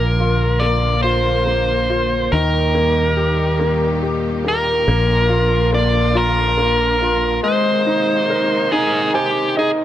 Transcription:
0.00 2.29 A#1 medium
0.00 2.30 D3 soft
0.00 0.34 F3 medium
0.00 2.31 F3 soft
0.00 0.34 A#3 medium
0.00 0.60 A#3 medium
0.00 2.31 A#3 soft
0.00 2.31 F4 soft
0.00 0.66 A#4 medium
0.00 2.31 A#4 medium
0.20 1.03 F4 soft
0.60 1.44 A#3 soft
0.60 1.02 D5 medium
1.03 1.89 F4 soft
1.03 2.36 C5 medium
1.46 2.29 A#3 soft
1.90 2.31 F4 soft
2.32 4.83 D#2 medium
2.32 7.39 A#2 medium
2.32 4.84 D#3 medium
2.32 4.85 D#3 medium
2.32 4.85 G3 medium
2.32 4.85 D#4 soft
2.32 4.85 G4 medium
2.32 3.98 A#4 medium
2.75 3.58 A#3 soft
3.17 4.01 G4 soft
3.60 4.43 A#3 soft
4.03 4.85 G4 soft
4.44 4.86 A#3 soft
4.44 5.70 A#4 medium
4.88 7.39 A#1 medium
4.88 7.41 D3 medium
4.88 7.41 F3 medium
4.88 5.71 A#3 medium
4.88 7.40 D4 medium
4.88 7.40 F4 medium
5.29 6.14 F4 soft
5.72 6.56 A#3 soft
5.72 6.17 D5 medium
6.15 7.00 F4 medium
6.15 7.40 A#4 medium
6.57 7.40 A#3 soft
7.02 7.42 F4 soft
7.43 9.85 C3 medium
7.43 9.85 D#3 medium
7.43 9.85 G#3 medium
7.43 9.85 A#3 medium
7.43 9.85 D#4 medium
7.43 9.10 C5 medium
7.86 8.71 D#4 medium
8.30 9.85 A#4 soft
8.72 9.55 D#4 medium
8.72 9.11 G#4 medium
9.14 9.54 G4 medium
9.14 9.85 C5 soft
9.14 9.53 G#5 medium
9.57 9.85 D#4 soft
9.57 9.70 G#4 medium
9.57 9.85 D#5 medium

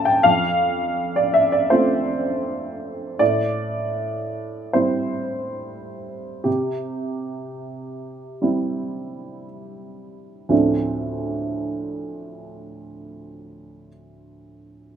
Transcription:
0.00 0.21 D2 medium
0.00 0.21 A3 soft
0.00 0.22 C4 soft
0.00 0.22 F4 soft
0.00 0.05 G5 medium
0.00 0.28 A5 medium
0.05 0.24 G5 medium
0.23 3.16 F2 soft
0.23 1.16 F5 medium
1.16 1.35 D5 medium
1.34 1.52 E5 medium
1.52 1.71 D5 medium
1.70 3.16 A3 soft
1.70 3.16 C4 soft
1.70 3.17 F4 soft
1.70 2.07 C5 medium
3.19 6.42 A2 soft
3.19 4.73 D5 medium
4.73 6.42 G3 soft
4.73 6.42 C4 soft
4.73 6.42 E4 soft
4.73 6.46 C5 medium
6.44 10.46 C3 soft
6.44 9.45 G4 soft
8.42 10.46 G3 soft
8.42 10.46 C4 soft
8.42 10.47 E4 soft
10.49 13.86 D2 soft
10.49 13.86 A2 soft
10.49 13.86 F3 soft
10.49 13.87 A3 soft
10.49 13.87 C4 soft
10.49 13.88 D4 soft

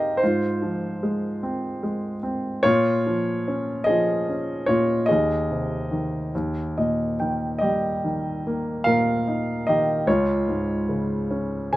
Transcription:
0.00 0.17 G#2 soft
0.00 0.23 D#3 soft
0.00 0.24 C4 soft
0.00 0.23 D#4 soft
0.00 0.19 G4 medium
0.00 0.23 G#4 medium
0.00 0.20 D#5 medium
0.00 0.23 F5 medium
0.17 2.16 C5 medium
0.23 2.60 G#2 medium
0.23 2.19 F4 medium
0.62 2.18 F3 soft
1.03 1.82 G#3 soft
1.43 2.22 C4 soft
1.83 2.61 G#3 soft
2.23 2.62 C4 medium
2.63 4.67 A#2 medium
2.63 3.82 F4 medium
2.63 3.89 C#5 medium
3.06 3.87 F3 soft
3.48 4.28 C#4 soft
3.84 4.64 G#4 medium
3.84 4.62 D#5 medium
3.89 5.06 F3 medium
4.29 5.07 C#4 soft
4.66 5.08 A#2 soft
4.66 5.05 F4 medium
4.66 5.05 C#5 medium
5.06 7.14 G#4 medium
5.06 6.76 D#5 medium
5.11 6.30 D#2 medium
5.51 6.31 C3 soft
5.91 6.32 D#3 soft
6.35 8.83 D#2 medium
6.78 8.42 A#2 soft
6.78 7.16 D#5 medium
7.20 8.03 D#3 soft
7.20 7.59 G5 soft
7.59 9.23 G3 soft
7.59 8.82 G4 medium
7.59 8.88 D#5 medium
8.04 9.63 D#3 soft
8.47 10.04 A#3 soft
8.84 10.04 A#2 medium
8.84 9.63 A#4 medium
8.84 9.62 F5 medium
9.28 10.05 D#4 soft
9.67 10.07 D#3 soft
9.67 10.05 G4 medium
9.67 10.04 D#5 medium
10.07 11.77 C#2 medium
10.07 11.77 F4 medium
10.07 11.77 C#5 medium
10.48 11.77 G#2 soft
10.89 11.71 C#3 soft
11.31 11.77 C#4 medium
11.73 11.77 C#3 medium
11.73 11.77 G#5 medium

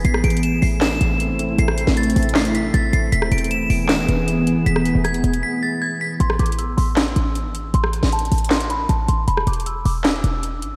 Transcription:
0.05 0.23 A1 loud
0.05 3.09 A3 medium
0.05 3.09 C4 medium
0.05 3.09 E4 loud
0.05 0.21 C7 loud
0.05 closed hi-hat medium
0.14 cross-stick loud
0.24 0.61 A1 loud
0.24 0.41 D7 medium
0.24 closed hi-hat medium
0.30 closed hi-hat medium
0.37 closed hi-hat medium
0.43 0.60 E7 medium
0.43 closed hi-hat medium
0.62 0.99 A1 loud
0.62 0.79 C7 medium
0.62 open hi-hat medium
0.81 1.54 E7 medium
0.81 snare loud
0.81 clap medium
0.81 closed hi-hat medium
1.01 1.31 A1 loud
1.01 closed hi-hat medium
1.20 closed hi-hat medium
1.30 1.46 G#1 loud
1.39 closed hi-hat medium
1.44 1.58 A1 medium
1.58 1.86 A1 loud
1.58 1.95 C7 medium
1.58 closed hi-hat medium
1.68 cross-stick loud
1.78 closed hi-hat medium
1.87 2.15 A1 loud
1.87 snare medium
1.97 2.33 A6 medium
1.97 closed hi-hat medium
2.03 closed hi-hat medium
2.10 closed hi-hat medium
2.16 2.72 A1 loud
2.16 closed hi-hat medium
2.16 open hi-hat medium
2.23 closed hi-hat medium
2.29 closed hi-hat medium
2.35 2.52 C7 medium
2.35 snare loud
2.35 clap medium
2.35 closed hi-hat soft
2.45 closed hi-hat medium
2.55 2.71 B6 medium
2.55 closed hi-hat medium
2.74 2.92 A1 loud
2.74 2.90 A6 medium
2.74 closed hi-hat medium
2.93 3.12 A1 loud
2.93 3.10 C7 medium
2.93 closed hi-hat medium
3.12 3.31 E1 loud
3.12 6.17 E3 medium
3.12 6.17 B3 medium
3.12 6.17 G#4 loud
3.12 3.29 B6 loud
3.12 closed hi-hat medium
3.22 cross-stick loud
3.32 3.69 E1 loud
3.32 3.48 D7 medium
3.32 closed hi-hat medium
3.38 closed hi-hat medium
3.44 closed hi-hat medium
3.51 3.67 E7 medium
3.51 closed hi-hat medium
3.70 4.07 E1 loud
3.70 3.87 D7 loud
3.70 open hi-hat medium
3.89 4.62 E7 loud
3.89 snare loud
3.89 clap medium
3.89 closed hi-hat medium
4.09 4.48 E1 loud
4.09 closed hi-hat medium
4.28 closed hi-hat medium
4.47 4.58 G#1 medium
4.47 closed hi-hat medium
4.57 4.66 E1 loud
4.66 4.94 E1 loud
4.66 5.02 B6 loud
4.66 closed hi-hat medium
4.76 cross-stick loud
4.85 closed hi-hat medium
4.95 5.23 E1 loud
5.04 5.41 G#6 medium
5.04 cross-stick medium
5.04 closed hi-hat medium
5.14 closed hi-hat medium
5.24 5.43 E1 loud
5.24 closed hi-hat medium
5.34 closed hi-hat medium
5.43 5.60 B6 medium
5.63 5.79 A6 medium
5.82 5.98 G#6 medium
6.01 6.17 B6 medium
6.20 6.39 A1 loud
6.20 6.37 C6 loud
6.20 closed hi-hat medium
6.30 cross-stick loud
6.39 6.76 A1 loud
6.39 6.56 D6 medium
6.39 closed hi-hat medium
6.46 closed hi-hat medium
6.52 closed hi-hat medium
6.59 6.75 E6 medium
6.59 closed hi-hat medium
6.77 7.15 A1 loud
6.77 6.94 C6 medium
6.77 open hi-hat medium
6.96 7.70 E6 medium
6.96 snare loud
6.96 clap medium
6.96 closed hi-hat medium
7.16 7.47 A1 loud
7.16 closed hi-hat medium
7.35 closed hi-hat medium
7.45 7.61 G#1 loud
7.55 closed hi-hat medium
7.59 7.73 A1 loud
7.74 8.02 A1 loud
7.74 8.10 C6 loud
7.74 closed hi-hat medium
7.84 cross-stick loud
7.93 closed hi-hat medium
8.03 8.30 A1 loud
8.03 snare medium
8.12 8.49 A5 medium
8.12 closed hi-hat medium
8.19 closed hi-hat medium
8.25 closed hi-hat medium
8.32 8.87 A1 loud
8.32 closed hi-hat medium
8.32 open hi-hat medium
8.38 closed hi-hat medium
8.44 closed hi-hat medium
8.50 8.67 C6 medium
8.50 snare loud
8.50 clap medium
8.50 closed hi-hat soft
8.60 closed hi-hat medium
8.70 8.87 B5 medium
8.70 closed hi-hat medium
8.89 9.08 A1 loud
8.89 9.06 A5 medium
8.89 closed hi-hat medium
9.08 9.27 A1 loud
9.08 9.25 C6 medium
9.08 closed hi-hat medium
9.28 9.46 E1 loud
9.28 9.44 B5 loud
9.28 closed hi-hat medium
9.37 cross-stick loud
9.47 9.84 E1 loud
9.47 9.64 D6 medium
9.47 closed hi-hat medium
9.53 closed hi-hat medium
9.60 closed hi-hat medium
9.66 9.83 E6 medium
9.66 closed hi-hat medium
9.85 10.22 E1 loud
9.85 10.02 D6 medium
9.85 open hi-hat medium
10.04 10.76 E6 medium
10.04 snare loud
10.04 clap medium
10.04 closed hi-hat medium
10.24 10.64 E1 loud
10.24 closed hi-hat medium
10.43 closed hi-hat medium
10.62 10.73 G#1 loud
10.62 closed hi-hat medium
10.72 10.76 E1 loud

